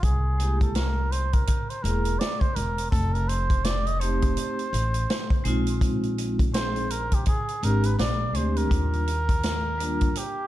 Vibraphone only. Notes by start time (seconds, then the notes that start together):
0.38 G#3 A#3 E4 G4
1.82 G#3 A#3 E4 G#4
4.00 A3 C4 D#4 G4
5.44 G#3 C4 D#4 F4
6.52 G#3 C4 D#4 G#4
7.61 G#3 C4 D4 G4
8.33 G#3 C4 D4 G4
8.70 G3 A#3 D4 F4
9.78 G3 A#3 D4 F4